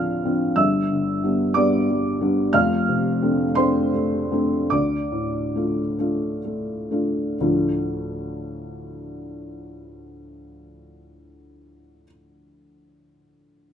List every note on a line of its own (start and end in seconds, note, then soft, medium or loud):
0.00 0.54 D2 medium
0.00 0.60 A2 soft
0.00 0.25 F3 medium
0.00 0.25 C4 soft
0.00 0.26 D4 medium
0.00 0.60 A4 medium
0.00 0.53 F5 medium
0.00 0.60 A5 medium
0.00 0.57 F6 loud
0.25 0.54 F3 soft
0.25 0.55 C4 soft
0.25 0.55 D4 medium
0.56 2.49 G1 medium
0.56 2.50 G2 medium
0.56 1.51 E5 medium
0.56 1.54 E6 medium
0.91 1.43 D3 soft
1.23 1.53 G3 soft
1.23 1.52 B3 soft
1.23 1.53 D4 medium
1.54 1.85 G3 medium
1.54 1.85 B3 medium
1.54 1.85 D4 medium
1.54 2.50 D5 medium
1.54 2.53 D6 loud
1.90 2.19 G3 medium
2.21 2.50 G3 medium
2.21 2.51 B3 medium
2.21 2.51 D4 medium
2.53 4.67 F1 medium
2.53 4.68 F2 medium
2.53 3.53 F5 medium
2.53 3.57 F6 loud
2.89 3.43 C3 medium
3.22 3.54 A3 medium
3.22 3.54 C4 medium
3.22 3.55 D4 medium
3.55 3.91 A3 medium
3.55 3.91 C4 medium
3.55 3.91 D4 medium
3.55 4.67 C5 medium
3.55 4.70 C6 loud
3.94 4.30 A3 medium
4.31 4.67 A3 medium
4.31 4.67 C4 soft
4.31 4.68 D4 medium
4.70 7.34 D2 medium
4.70 5.93 D5 medium
4.70 5.96 D6 medium
5.12 5.79 A2 medium
5.55 5.94 A3 soft
5.55 5.94 D4 soft
5.55 5.94 F4 medium
5.99 6.39 A3 medium
5.99 6.39 D4 soft
5.99 6.39 F4 soft
6.45 6.89 A3 soft
6.91 7.34 A3 soft
6.91 7.35 D4 soft
6.91 7.35 F4 soft
7.40 12.04 D2 medium
7.40 12.03 A2 soft
7.40 12.03 F3 medium
7.40 12.04 A3 medium
7.40 12.04 D4 medium
7.40 12.05 F4 soft